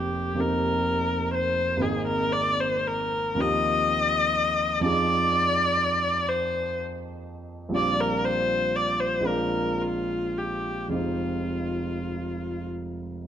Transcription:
0.00 0.33 F1 soft
0.00 0.34 A#3 soft
0.00 0.35 C4 soft
0.00 0.36 D#4 soft
0.00 0.36 G4 soft
0.00 0.42 G4 medium
0.34 1.76 F1 soft
0.34 1.76 A#3 soft
0.34 1.77 C4 soft
0.34 1.78 D#4 soft
0.39 1.78 G4 soft
0.39 1.34 A#4 medium
1.35 1.84 C5 medium
1.77 3.34 G#1 soft
1.77 3.34 A#3 soft
1.77 3.35 C4 soft
1.77 3.35 D#4 soft
1.82 3.36 G#4 soft
1.82 2.07 G#4 medium
2.07 2.34 A#4 medium
2.32 2.62 D5 medium
2.60 2.89 C5 medium
2.88 3.42 A#4 medium
3.35 4.80 D#2 soft
3.35 4.80 F3 soft
3.35 4.81 C4 soft
3.35 4.81 D#4 soft
3.40 4.82 G4 soft
3.40 4.86 D#5 medium
4.80 7.68 F2 soft
4.80 7.69 F3 soft
4.80 7.69 C4 soft
4.80 7.70 D#4 soft
4.85 7.70 G#4 soft
4.85 6.30 D5 medium
6.29 6.77 C5 medium
7.69 9.19 A#1 soft
7.69 9.20 G3 soft
7.69 9.20 C4 soft
7.69 9.21 D4 soft
7.74 9.22 F4 soft
7.74 8.02 D5 medium
8.01 8.26 A#4 medium
8.25 8.77 C5 medium
8.76 9.02 D5 medium
9.00 9.28 C5 medium
9.21 10.88 A#1 soft
9.21 10.88 G#3 soft
9.21 10.90 C4 soft
9.21 10.90 D4 soft
9.26 10.91 F4 soft
9.26 9.83 A#4 medium
9.82 10.39 F4 medium
10.38 10.95 G4 medium
10.88 13.27 F1 soft
10.88 13.27 G#3 soft
10.88 13.27 C4 soft
10.88 13.27 D#4 soft
10.94 13.27 F4 soft
10.94 12.67 F4 medium

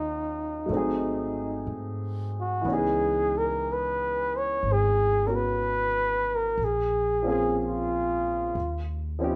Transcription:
0.00 0.64 D#2 medium
0.00 0.69 D#3 soft
0.00 0.64 F#3 soft
0.00 0.70 A#3 soft
0.00 0.71 C#4 soft
0.00 1.72 D#4 medium
0.00 0.71 F4 soft
0.66 1.63 G#1 medium
0.66 2.64 F#3 soft
0.66 2.64 A3 soft
0.72 2.66 C4 soft
0.72 2.67 D#4 soft
0.77 2.69 G#4 soft
1.67 2.61 G#2 medium
2.40 2.76 F#4 medium
2.61 4.57 C#2 medium
2.61 6.56 E3 soft
2.61 5.24 B3 soft
2.68 5.26 C#4 soft
2.68 6.61 D#4 soft
2.73 6.62 G#4 soft
2.73 3.39 G#4 medium
3.38 3.74 A#4 medium
3.73 4.39 B4 medium
4.38 4.74 C#5 medium
4.63 6.55 G#1 medium
4.72 5.29 G#4 medium
5.26 6.57 B3 soft
5.26 6.58 C#4 soft
5.26 6.59 F#4 soft
5.26 5.37 A#4 medium
5.36 6.37 B4 medium
6.35 6.66 A#4 medium
6.58 8.51 A#1 medium
6.64 7.27 G#4 medium
7.22 8.54 F3 soft
7.22 8.55 A#3 soft
7.22 8.55 C4 soft
7.22 8.56 C#4 soft
7.28 8.57 G#4 medium
7.28 7.57 G#4 medium
7.65 8.85 F4 medium
8.55 9.36 D#2 medium
9.19 9.36 F3 soft
9.19 9.36 C4 soft
9.19 9.36 C#4 soft
9.19 9.36 D#4 soft
9.24 9.36 G4 soft
9.31 9.36 F4 medium

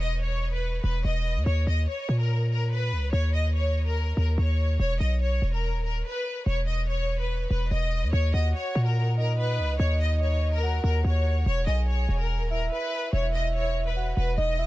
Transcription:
0.00 0.80 E1 loud
0.00 0.17 D#5 medium
0.22 0.51 C#5 medium
0.53 0.82 B4 medium
0.83 1.04 E1 loud
0.83 1.00 B4 medium
1.05 1.37 E1 loud
1.05 1.44 D#5 medium
1.36 1.46 E2 loud
1.46 1.66 D#2 loud
1.46 1.62 C#5 loud
1.67 1.87 D#2 loud
1.67 1.84 D#5 medium
1.88 2.17 C#5 medium
2.09 2.93 A#2 loud
2.19 2.48 A#4 medium
2.50 2.67 A#4 medium
2.71 3.10 B4 medium
2.92 3.12 C#2 loud
3.12 4.13 D#2 loud
3.12 3.29 C#5 loud
3.34 3.51 D#5 medium
3.54 3.84 C#5 medium
3.86 4.15 A#4 medium
4.17 4.37 D#2 loud
4.17 4.34 A#4 medium
4.38 4.78 D#2 loud
4.38 4.77 C#5 medium
4.80 5.00 E1 loud
4.80 4.96 C#5 loud
5.00 5.40 B1 loud
5.00 5.17 D#5 medium
5.21 5.51 C#5 medium
5.42 5.75 E1 loud
5.53 5.82 A#4 medium
5.73 6.03 D#1 loud
5.84 6.00 A#4 medium
6.05 6.44 B4 medium
6.46 7.46 E1 loud
6.46 6.63 C#5 loud
6.67 6.83 D#5 medium
6.88 7.17 C#5 medium
7.19 7.48 B4 medium
7.50 7.70 E1 loud
7.50 7.66 B4 medium
7.71 8.04 E1 loud
7.71 8.10 D#5 medium
8.02 8.12 E2 loud
8.12 8.33 D#2 loud
8.12 8.29 C#5 loud
8.34 8.54 D#2 loud
8.34 8.51 D#5 medium
8.34 9.13 F#5 medium
8.55 8.84 C#5 medium
8.75 9.60 A#2 loud
8.85 9.15 A#4 medium
9.17 9.34 A#4 medium
9.17 9.76 D#5 medium
9.38 9.77 B4 loud
9.59 9.78 C#2 loud
9.78 10.80 D#2 loud
9.78 9.95 C#5 loud
9.78 10.59 D#5 loud
10.01 10.17 D#5 medium
10.21 10.50 C#5 medium
10.52 10.82 A#4 medium
10.63 11.42 F#5 medium
10.84 11.04 D#2 loud
10.84 11.00 A#4 medium
11.04 11.44 D#2 loud
11.04 11.44 C#5 medium
11.46 11.66 E1 loud
11.46 11.63 C#5 loud
11.67 12.07 B1 loud
11.67 11.83 D#5 medium
11.67 12.46 G#5 medium
11.88 12.17 C#5 medium
12.09 12.41 E1 loud
12.19 12.49 A#4 medium
12.40 12.70 D#1 loud
12.50 12.67 A#4 medium
12.50 13.09 E5 medium
12.71 13.10 B4 loud
13.13 14.13 E1 loud
13.13 13.29 C#5 loud
13.13 13.92 E5 loud
13.34 13.50 D#5 medium
13.55 13.84 C#5 medium
13.86 14.15 B4 medium
13.96 14.35 F#5 medium
14.16 14.37 E1 loud
14.16 14.33 B4 medium
14.38 14.66 E1 loud
14.38 14.57 D#5 loud
14.38 14.66 D#5 medium
14.59 14.66 E5 medium

